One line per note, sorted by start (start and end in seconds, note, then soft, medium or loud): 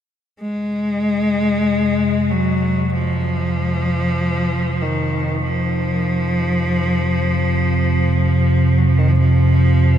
0.39 9.98 F2 medium
0.39 9.98 C3 medium
0.39 2.32 G#3 medium
2.30 2.95 F#3 medium
2.93 4.83 F3 medium
4.82 5.42 D#3 medium
5.43 8.80 F3 medium
8.78 8.90 F#3 medium
8.88 9.00 F3 medium
8.98 9.10 D#3 medium
9.08 9.17 F3 medium
9.19 9.98 F3 medium